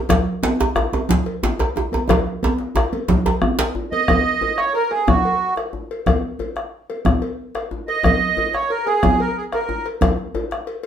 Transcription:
0.09 bombo rim, bombo low, cowbell, djembe slap, djembe bass, low conga
0.26 bombo rim
0.43 cowbell, djembe slap, djembe tone, high conga
0.59 bombo rim, djembe slap, djembe tone
0.75 bombo rim, cowbell, djembe tone, djembe bass
0.93 cowbell, high conga, djembe tone
1.09 bombo rim, bombo low, djembe slap, djembe tone, low conga
1.26 cowbell
1.43 djembe slap, high conga, djembe bass
1.59 cowbell, djembe slap, high conga, djembe tone
1.76 bombo rim, djembe tone
1.92 cowbell, high conga, djembe tone
2.09 bombo rim, bombo low, cowbell, djembe slap, high conga, djembe tone, djembe bass, low conga
2.26 bombo rim, djembe slap
2.43 cowbell, high conga, djembe tone
2.58 bombo rim, djembe slap
2.75 bombo rim, cowbell, djembe tone, high conga, djembe bass
2.93 cowbell, high conga
3.08 bombo rim, bombo low, djembe slap, djembe tone, low conga
3.26 bombo rim, cowbell, djembe tone
3.42 bombo rim, high conga, djembe bass
3.59 cowbell, djembe slap
3.75 djembe tone
3.92 D#5, cowbell, high conga
4.08 bombo rim, bombo low, cowbell, djembe slap, high conga, low conga, djembe bass
4.41 cowbell, djembe slap, djembe tone, high conga
4.57 C#5, bombo rim, djembe slap
4.73 A#4, cowbell, djembe slap
4.90 G#4, bombo rim, cowbell, high conga
5.08 F#4, bombo rim, bombo low, djembe slap, djembe tone, high conga, djembe bass, low conga
5.25 cowbell
5.56 bombo rim, cowbell, djembe slap
5.73 djembe slap, djembe tone
5.91 cowbell
6.06 bombo rim, bombo low, cowbell, djembe slap, high conga, djembe bass, low conga
6.39 cowbell, djembe slap, djembe tone, high conga
6.56 bombo rim, djembe slap
6.90 bombo rim, cowbell, high conga
7.05 bombo rim, bombo low, djembe slap, high conga, djembe tone, low conga, djembe bass
7.22 cowbell
7.55 bombo rim, cowbell, djembe slap
7.71 djembe slap, djembe tone
7.88 D#5, cowbell
8.03 bombo rim, bombo low, cowbell, djembe slap, high conga, djembe bass, low conga
8.37 cowbell, djembe slap, djembe tone
8.54 C#5, bombo rim, djembe slap
8.70 A#4, cowbell, djembe slap
8.86 G#4, bombo rim, cowbell, high conga
9.03 bombo rim, bombo low, djembe slap, high conga, djembe tone, low conga, djembe bass
9.20 A#4, cowbell
9.37 G#4
9.52 A#4, bombo rim, cowbell, djembe slap
9.69 djembe slap, djembe tone
9.86 cowbell
10.01 bombo rim, bombo low, cowbell, djembe slap, high conga, low conga, djembe bass
10.18 djembe slap, high conga
10.34 cowbell, djembe tone
10.51 bombo rim, djembe slap
10.67 cowbell

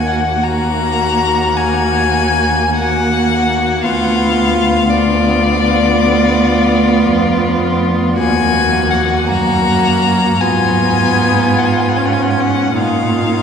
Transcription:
Already playing: D#2 A#3 F#4
0.07 F#5
0.43 A#3 F#4 A#5
1.57 G#5
2.73 A#3 F#4 F#5
3.83 D2 B3 F4 F5
4.90 B3 F4 D5
7.10 F2
8.18 D#2 A#3 F#4 G#5
8.91 F#5
9.28 F#2 A#3 F#4 A#5
10.41 G#2 B3 F4 G#5
11.58 F#5
11.65 G#5
11.73 F#5
11.81 G#5
11.89 F#5
11.96 C#4 G#5
12.06 F#5
12.13 G#5
12.22 F#5
12.31 G#5
12.40 F#5
12.76 A#2 D#4 F4 F5

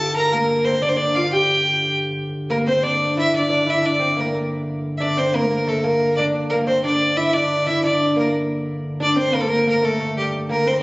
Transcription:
Already playing: G2 D3 A4 A5
0.16 A#4 A#5
0.32 A#3 A#4
0.65 C4 C5
0.82 D4 D5
0.89 C5
0.95 D4 D5
1.15 F4 F5
1.32 G4 G5
2.34 G2 D3
2.49 A#3 A#4
2.67 C4 C5
2.82 D4 D5
3.17 E4 E5
3.34 D4 D5
3.41 E4
3.48 D4
3.67 E4 E5
3.82 D4 D5
3.99 C4
4.16 A#3 A#4
4.98 D4 D5 E5
5.17 C4 C5
5.33 A#3 A#4
5.43 A3
5.50 A#3
5.67 A3 A4
5.84 A#3 A#4
6.17 D4 D5
6.35 G2 D3
6.50 A#3 A#4
6.67 C4 C5
6.84 D4 D5
7.16 E4 E5
7.33 D4 D5
7.66 E4 E5
7.83 D4 D5
8.16 A#3 A#4
9.00 D4 D5
9.16 C4 C5
9.32 A#3 A#4
9.40 A4
9.47 A#3 A#4
9.67 A#3 A#4
9.82 A3 A4
10.00 A3
10.17 G3 G4
10.33 G2 D3
10.49 A#3 A#4
10.66 C4 C5

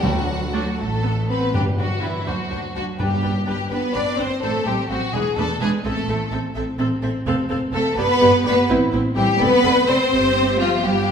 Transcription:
0.02 D2 D3 F#3 F#4 F#5
0.53 F#3 A3 D4 F#4
0.78 A1 A3 A4
1.03 B3
1.28 B3 C4 B4
1.53 G2 G3 D4 G4 B4 G5
1.78 G2 F#3 D4 F#4 B4 G5
2.02 G2 E3 D4 E4 B4 G5
2.26 D2 F#3 D4 F#4 C5 A5
2.50 D2 D4 C5 A5
2.75 D2 F#3 D4 F#4 C5 A5
2.99 G1 G2 G3 D4 G4 B4 G5
3.23 G1 D4 B4 G5
3.46 G1 G3 D4 G4 B4 G5
3.70 G1 B3 D4 B4 G5
3.94 G1 D4 B4 D5 G5
4.18 G1 C4 D4 B4 C5 G5
4.42 A1 A3 C4 A4 C5 E5
4.65 A1 G3 C4 G4 C5 E5
4.89 A1 F#3 C4 F#4 C5 E5
5.13 E1 G#3 D4 G#4 B4 E5
5.37 E1 A3 D4 A4 B4 E5
5.60 E1 G#3 D4 G#4 B4 E5
5.84 A1 A3 C4 A4 E5
6.08 A1 C4 A4 E5
6.31 A1 C4 A4 E5
6.55 A1 C4 A4 E5
6.79 A1 C4 A4 E5
7.02 A1 C4 A4 E5
7.26 F1 C4 A4 F5
7.50 F1 C4 A4 F5
7.73 F1 A3 C4 A4 F5
7.97 G1 B3 G4 B4 D5
8.21 G1 B3 G4 D5
8.44 G1 B3 G4 B4 D5
8.68 A1 C4 E4 C5
8.91 A1 C4 E4 C5
9.16 A1 G3 C4 E4 G4 C5
9.40 F1 B3 C4 A4 B4 D5
9.64 F1 C4 A4 D5
9.87 F1 C4 A4 C5 D5
10.12 G1 C4 G4 E5
10.60 F3 F4
10.85 G1 G3 B3 G4 F5

